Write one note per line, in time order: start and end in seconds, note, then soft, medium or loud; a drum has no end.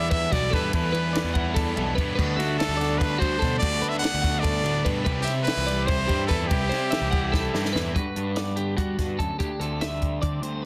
0.00 0.27 E2 medium
0.00 0.70 E2 medium
0.00 0.70 E3 medium
0.00 0.32 G3 medium
0.00 0.33 G3 medium
0.00 0.32 B3 medium
0.00 0.12 D4 medium
0.00 0.29 E4 medium
0.00 0.70 E4 medium
0.00 0.11 D5 medium
0.00 0.10 E5 loud
0.10 0.52 D4 medium
0.10 0.31 B4 medium
0.10 0.34 E5 loud
0.10 kick loud
0.10 ride loud
0.30 0.50 B1 loud
0.30 0.70 B2 medium
0.30 1.15 G3 medium
0.30 0.52 G3 medium
0.30 0.53 B3 medium
0.30 0.54 E4 medium
0.30 0.52 F#4 medium
0.30 0.55 D5 medium
0.30 kick medium
0.30 snare soft
0.30 ride medium
0.51 0.71 G2 medium
0.51 0.70 E3 medium
0.51 0.73 G3 loud
0.51 0.74 B3 loud
0.51 0.76 D4 medium
0.51 0.92 A4 medium
0.51 0.73 B4 loud
0.51 kick medium
0.51 snare soft
0.51 ride medium
0.55 0.74 E4 loud
0.72 2.15 E2 medium
0.72 0.92 E2 loud
0.72 1.13 E3 loud
0.72 0.96 G3 medium
0.72 0.94 B3 loud
0.72 1.35 E4 medium
0.72 0.92 E4 loud
0.72 1.52 B4 medium
0.72 kick loud
0.72 ride loud
0.93 1.12 E3 medium
0.93 1.15 G3 medium
0.93 1.17 B3 medium
0.93 1.56 D4 medium
0.93 1.17 E4 medium
0.93 1.13 B4 medium
0.93 ride medium
1.13 1.55 E3 medium
1.13 2.15 E3 medium
1.13 1.38 G3 medium
1.13 1.77 G3 medium
1.13 1.33 D5 medium
1.13 snare loud
1.13 ride loud
1.17 1.36 B3 medium
1.17 1.33 E4 medium
1.24 1.72 E2 medium
1.34 1.77 B3 medium
1.34 1.75 E4 medium
1.34 2.15 E4 medium
1.34 1.55 F#5 medium
1.34 kick medium
1.34 ride medium
1.38 1.79 G3 medium
1.54 1.98 D4 medium
1.54 1.95 A4 medium
1.54 kick loud
1.54 ride loud
1.76 1.95 B1 medium
1.76 2.15 B2 medium
1.76 2.60 G3 medium
1.76 1.98 G3 medium
1.76 1.99 B3 medium
1.76 1.99 E4 medium
1.76 ride medium
1.95 2.16 G2 medium
1.95 2.16 E3 medium
1.95 2.17 G3 loud
1.95 2.39 D4 medium
1.95 2.14 B4 medium
1.95 kick medium
1.95 ride medium
2.00 2.19 B3 loud
2.00 2.18 E4 loud
2.15 3.20 D2 medium
2.15 2.37 D2 medium
2.15 2.58 D3 medium
2.15 2.42 G3 medium
2.15 2.40 B3 medium
2.15 2.80 F#4 medium
2.15 2.37 B4 medium
2.15 kick loud
2.15 crash loud
2.20 2.38 D4 loud
2.36 2.56 D3 medium
2.36 2.61 D4 medium
2.36 3.00 D4 medium
2.36 2.57 F#4 medium
2.36 2.77 E5 medium
2.36 ride medium
2.41 2.59 G3 medium
2.41 2.61 B3 medium
2.41 snare soft
2.59 3.00 D3 medium
2.59 4.02 D3 medium
2.59 2.81 G3 medium
2.59 3.21 G3 medium
2.59 2.80 B3 medium
2.59 2.77 D4 medium
2.59 3.00 A4 medium
2.59 snare loud
2.59 ride loud
2.69 3.16 D2 medium
2.77 3.22 B3 medium
2.77 3.19 D4 medium
2.77 3.60 F#4 medium
2.77 2.99 D5 medium
2.77 ride medium
2.82 3.23 G3 medium
2.82 snare soft
2.98 3.41 D4 medium
2.98 3.19 B4 medium
2.98 3.20 B4 medium
2.98 kick loud
2.98 ride medium
3.02 snare soft
3.18 3.61 D2 medium
3.18 3.40 D2 loud
3.18 4.03 G3 medium
3.18 3.42 B3 medium
3.18 3.42 D4 medium
3.18 3.39 F#4 medium
3.18 3.58 C5 medium
3.18 kick medium
3.18 ride medium
3.24 3.41 G3 medium
3.39 3.60 B2 medium
3.39 3.58 D3 medium
3.39 3.61 G3 loud
3.39 3.62 B3 medium
3.39 3.60 D4 medium
3.39 3.81 A4 medium
3.39 kick medium
3.39 snare soft
3.39 ride medium
3.43 3.62 D4 loud
3.58 5.06 D2 medium
3.58 4.00 D3 medium
3.58 3.84 G3 loud
3.58 3.82 B3 loud
3.58 3.90 D5 loud
3.58 kick loud
3.63 3.81 D2 loud
3.63 3.79 D4 loud
3.63 4.23 F#4 medium
3.63 ride loud
3.81 4.01 D3 medium
3.81 4.03 G3 medium
3.81 4.04 B3 medium
3.81 4.04 D4 medium
3.81 5.04 D4 medium
3.81 4.03 B4 medium
3.81 ride medium
3.89 3.98 E5 medium
3.99 4.43 D3 medium
3.99 4.21 D5 medium
3.99 4.41 F#5 loud
4.03 5.06 D3 medium
4.03 4.25 G3 medium
4.03 5.09 B3 medium
4.03 4.24 B3 medium
4.03 4.21 D4 medium
4.03 snare loud
4.03 ride loud
4.14 4.61 D2 medium
4.22 4.66 G3 medium
4.22 4.65 B3 medium
4.22 4.62 D4 medium
4.22 5.04 F#4 medium
4.22 4.43 F#5 medium
4.22 kick medium
4.22 snare soft
4.22 ride medium
4.40 4.84 A4 medium
4.40 4.88 D5 loud
4.44 4.64 G2 medium
4.44 kick loud
4.44 snare soft
4.44 ride loud
4.63 4.83 D2 loud
4.63 4.84 A2 medium
4.63 4.85 G3 medium
4.63 4.86 B3 medium
4.63 4.86 D4 medium
4.63 ride medium
4.84 5.04 G2 medium
4.84 5.05 B2 medium
4.84 5.04 D3 medium
4.84 5.06 G3 loud
4.84 5.06 B3 loud
4.84 5.06 D4 medium
4.84 5.04 B4 medium
4.84 kick medium
4.84 ride medium
5.05 5.25 C2 loud
5.05 5.47 C3 loud
5.05 5.47 C3 medium
5.05 5.29 G3 medium
5.05 5.27 C4 loud
5.05 5.25 E4 loud
5.05 5.67 G4 medium
5.05 5.26 B4 medium
5.05 kick loud
5.05 ride loud
5.22 5.45 C3 medium
5.22 5.49 E4 medium
5.22 5.32 G4 medium
5.22 5.66 E5 medium
5.26 5.47 G3 medium
5.26 5.48 C4 medium
5.26 5.88 E4 medium
5.26 snare soft
5.26 ride medium
5.43 5.88 C3 medium
5.43 5.87 B4 loud
5.43 ride loud
5.47 6.48 E3 medium
5.47 5.72 G3 medium
5.47 6.10 G3 medium
5.47 5.69 C4 medium
5.47 5.67 E4 medium
5.47 snare loud
5.57 6.05 C2 medium
5.67 6.09 C4 medium
5.67 6.08 E4 medium
5.67 7.96 G4 medium
5.67 5.88 D5 medium
5.67 snare soft
5.67 ride medium
5.72 6.12 G3 medium
5.86 6.30 E4 medium
5.86 6.27 C5 medium
5.86 6.08 C5 medium
5.86 kick loud
5.86 snare soft
5.86 ride medium
6.07 6.48 G2 medium
6.07 6.28 G2 loud
6.07 6.92 G3 medium
6.07 6.31 C4 medium
6.07 6.32 E4 medium
6.07 6.29 G4 medium
6.07 kick medium
6.07 ride medium
6.12 6.31 G3 medium
6.27 6.49 E2 medium
6.27 6.48 C3 medium
6.27 6.50 G3 loud
6.27 6.49 A4 medium
6.27 6.69 B4 medium
6.27 kick medium
6.27 ride medium
6.32 6.51 C4 loud
6.32 6.49 E4 medium
6.32 6.52 E4 loud
6.47 6.69 C2 loud
6.47 6.90 C3 medium
6.47 6.72 G3 medium
6.47 7.73 G4 medium
6.47 kick loud
6.47 ride loud
6.52 6.93 C3 medium
6.52 6.71 C4 loud
6.52 6.69 E4 medium
6.52 6.72 E4 medium
6.69 6.90 C3 medium
6.69 6.93 C4 medium
6.69 6.94 E4 medium
6.69 6.91 C5 medium
6.69 snare soft
6.69 ride medium
6.74 6.92 G3 medium
6.74 7.13 E4 medium
6.91 7.33 C3 medium
6.91 7.93 E3 medium
6.91 7.16 G3 medium
6.91 7.14 C4 medium
6.91 7.10 E5 medium
6.91 snare loud
6.91 ride medium
6.95 7.11 E4 medium
7.01 7.49 C2 medium
7.11 7.53 E4 medium
7.11 7.34 E4 medium
7.11 7.32 F#5 medium
7.11 kick medium
7.11 ride medium
7.15 7.56 G3 medium
7.15 7.54 C4 medium
7.32 7.74 E4 medium
7.32 7.72 A4 medium
7.32 kick loud
7.32 snare medium
7.54 7.73 G2 medium
7.54 7.93 G2 medium
7.54 7.73 G3 medium
7.54 7.75 C4 medium
7.54 7.76 E4 medium
7.54 snare medium
7.65 snare medium
7.73 7.93 E2 medium
7.73 7.93 C3 medium
7.73 7.94 G3 medium
7.73 7.95 C4 medium
7.73 7.93 E4 medium
7.73 7.94 B4 medium
7.73 snare loud
7.77 7.95 E4 medium
7.95 9.19 G2 medium
7.95 8.05 G2 medium
7.95 9.38 F#4 medium
7.95 8.36 B4 medium
7.95 kick medium
7.95 closed hi-hat medium
8.16 8.74 G2 medium
8.16 8.77 D4 medium
8.16 closed hi-hat medium
8.36 9.37 B3 medium
8.36 8.57 D5 medium
8.36 snare loud
8.36 closed hi-hat medium
8.56 10.01 D3 medium
8.56 8.77 G4 medium
8.56 closed hi-hat medium
8.77 8.97 G3 medium
8.77 9.38 D4 medium
8.77 9.19 F#4 medium
8.77 kick medium
8.77 closed hi-hat medium
8.99 9.17 G2 medium
8.99 kick medium
8.99 snare soft
8.99 closed hi-hat medium
9.19 9.39 D2 medium
9.19 9.29 F#2 medium
9.19 9.39 A4 medium
9.19 kick medium
9.19 closed hi-hat medium
9.39 10.65 D2 medium
9.39 9.49 D2 medium
9.39 10.65 D4 medium
9.39 9.60 G4 medium
9.39 kick loud
9.39 closed hi-hat medium
9.60 10.18 D2 medium
9.60 10.24 C4 medium
9.60 9.81 A4 medium
9.60 closed hi-hat soft
9.81 10.65 G3 medium
9.81 10.21 E5 medium
9.81 snare loud
9.81 closed hi-hat medium
10.02 10.65 D3 medium
10.02 kick medium
10.02 closed hi-hat medium
10.22 10.42 D3 medium
10.22 10.65 C4 medium
10.22 10.43 D5 medium
10.22 kick loud
10.22 closed hi-hat medium
10.42 10.62 D2 medium
10.42 10.62 C5 medium
10.42 closed hi-hat medium